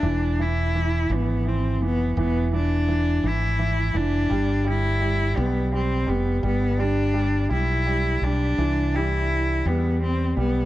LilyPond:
<<
  \new Staff \with { instrumentName = "Cello" } { \time 6/8 \key e \phrygian \tempo 4. = 56 d'8 e'4 b8 c'8 b8 | b8 d'4 e'4 d'8~ | d'8 e'4 b8 c'8 b8 | b8 d'4 e'4 d'8~ |
d'8 e'4 b8 c'8 b8 | }
  \new Staff \with { instrumentName = "Upright piano" } { \clef bass \time 6/8 \key e \phrygian e8 e8 e8 e8 e8 e8 | e8 e8 e8 e8 e8 e8 | g8 g8 g8 g8 g8 g8 | g8 g8 g8 g8 g8 g8 |
e8 g4 g4 g8 | }
  \new Staff \with { instrumentName = "Fretless electric bass" } { \clef bass \time 6/8 \key e \phrygian e,,4. gis,,4 f,,8 | e,,4. gis,,4 f,,8 | g,,4. b,,4 f,,8 | g,,4. b,,4 b,,8 |
c,4. e,4 b,,8 | }
>>